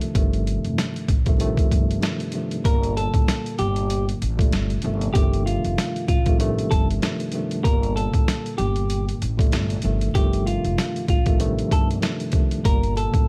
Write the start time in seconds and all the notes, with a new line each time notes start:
Already playing: G2 C3 D#3 F3 A3
0.01 closed hi-hat
0.14 G1 G2 C3 D#3 F3 A3, kick, closed hi-hat
0.33 closed hi-hat
0.47 closed hi-hat
0.65 F1, closed hi-hat
0.78 snare, closed hi-hat
0.96 closed hi-hat
1.08 A1, kick, closed hi-hat
1.26 G2 C3 D#3 F3 A3, kick, closed hi-hat
1.38 G2 C3 D#3 F3 A3, closed hi-hat
1.57 kick, closed hi-hat
1.71 G1, kick, closed hi-hat
1.91 closed hi-hat
2.00 G2 C3 D#3 F3 A3, snare, closed hi-hat
2.20 closed hi-hat
2.32 G2 C3 D#3 F3 A3, closed hi-hat
2.51 closed hi-hat
2.64 G1 A#2 D3 G3 A#3 A#4, kick, closed hi-hat
2.83 closed hi-hat
2.97 A4, closed hi-hat
3.14 A1, kick, closed hi-hat
3.28 snare, closed hi-hat
3.46 closed hi-hat
3.59 G1 G4, closed hi-hat
3.76 closed hi-hat
3.90 closed hi-hat
4.09 closed hi-hat
4.22 A1, closed hi-hat
4.37 A#2 D3 G3 A3, kick, closed hi-hat
4.53 G1, snare, closed hi-hat
4.70 closed hi-hat
4.82 G1 G2 C3 D#3 F3 A3, closed hi-hat
5.01 closed hi-hat
5.14 G1 G2 C3 D#3 F3 A3 G4, kick, closed hi-hat
5.33 closed hi-hat
5.46 F4, closed hi-hat
5.65 F1, closed hi-hat
5.78 snare, closed hi-hat
5.96 closed hi-hat
6.08 A1 F4, kick, closed hi-hat
6.26 G2 C3 D#3 F3 A3, kick, closed hi-hat
6.38 G2 C3 D#3 F3 A3, closed hi-hat
6.59 closed hi-hat
6.71 G1 A4, kick, closed hi-hat
6.90 closed hi-hat
7.00 G2 C3 D#3 F3 A3, snare, closed hi-hat
7.20 closed hi-hat
7.32 G2 C3 D#3 F3 A3, closed hi-hat
7.51 closed hi-hat
7.64 G1 A#2 D3 G3 A#3 A#4, kick, closed hi-hat
7.83 closed hi-hat
7.96 A4, closed hi-hat
8.14 A1, kick, closed hi-hat
8.28 snare, closed hi-hat
8.46 closed hi-hat
8.58 G1 G4, closed hi-hat
8.76 closed hi-hat
8.90 closed hi-hat
9.09 closed hi-hat
9.22 A1, closed hi-hat
9.37 A#2 D3 G3 A3, kick, closed hi-hat
9.52 G1, snare, closed hi-hat
9.70 closed hi-hat
9.82 G1 G2 C3 D#3 F3 A3, closed hi-hat
10.01 closed hi-hat
10.14 G1 G2 C3 D#3 F3 A3 G4, kick, closed hi-hat
10.33 closed hi-hat
10.46 F4, closed hi-hat
10.64 F1, closed hi-hat
10.78 snare, closed hi-hat
10.96 closed hi-hat
11.08 A1 F4, kick, closed hi-hat
11.26 G2 C3 D#3 F3 A3, kick, closed hi-hat
11.38 G2 C3 D#3 F3 A3, closed hi-hat
11.59 closed hi-hat
11.71 G1 A4, kick, closed hi-hat
11.91 closed hi-hat
12.00 G2 C3 D#3 F3 A3, snare, closed hi-hat
12.20 closed hi-hat
12.32 G2 C3 D#3 F3 A3, kick, closed hi-hat
12.51 closed hi-hat
12.64 G1 A#2 D3 G3 A#3 A#4, kick, closed hi-hat
12.83 closed hi-hat
12.97 A4, closed hi-hat
13.14 A1, kick, closed hi-hat